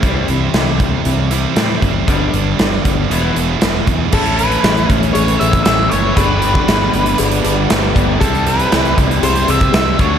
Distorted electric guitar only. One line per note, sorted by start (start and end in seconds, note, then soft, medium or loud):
0.03 1.30 C3 medium
0.03 1.30 G3 medium
0.03 1.30 C4 medium
0.03 1.30 E4 medium
1.31 1.55 C3 medium
1.31 1.56 G3 medium
1.31 1.56 C4 medium
1.31 1.55 E4 medium
1.56 2.06 C3 medium
1.56 2.07 G3 medium
1.56 2.07 C4 medium
1.56 2.08 E4 medium
2.07 3.08 G2 medium
2.07 3.09 D3 medium
2.07 3.09 G3 medium
2.07 3.09 B3 medium
2.07 3.10 D4 medium
3.10 4.11 E3 medium
3.10 4.12 G#3 medium
3.10 4.12 B3 medium
3.10 4.12 E4 medium
4.12 6.15 A2 medium
4.12 6.16 E3 medium
4.12 6.16 A3 loud
4.12 6.16 C#4 loud
4.12 6.17 E4 loud
6.16 8.19 G2 loud
6.16 8.19 D3 loud
6.16 8.20 G3 loud
6.16 8.20 B3 medium
6.16 8.20 D4 loud
8.20 9.97 C3 loud
8.20 9.98 G3 loud
8.20 9.98 C4 loud
8.20 9.99 E4 loud
9.99 10.19 D3 medium
9.99 10.19 F#3 medium
9.99 10.19 A3 medium
9.99 10.19 D4 medium